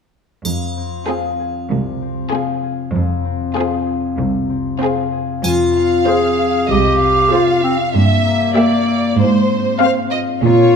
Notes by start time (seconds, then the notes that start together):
0.45 F2, triangle
0.77 C4
1.07 C4 F4 G#4
1.39 G#4
1.70 C2 C3
2.02 C4
2.31 C4 F4 G#4
2.63 G#4
2.93 F2
3.25 C4
3.56 C4 F4 G#4
3.87 G#4
4.18 C2 C3
4.50 C4
4.81 C4 F4 G#4
5.12 G#4
5.44 F2 F4 G#5, triangle
5.75 C4 F5
6.07 C4 G#4 C5
6.38 F4
6.70 C2 C3 G4 D#5
7.01 C4 F5
7.31 C4 F4 G#4 C5
7.63 C4 F4
7.94 G2 A#3 E5
8.25 A#3
8.56 A#3 G4 D5 E5
8.88 E4
9.18 G#2 C5
9.50 C4
9.80 C4 C5 F5
10.11 F4 D#5
10.42 A#2 F4 C#5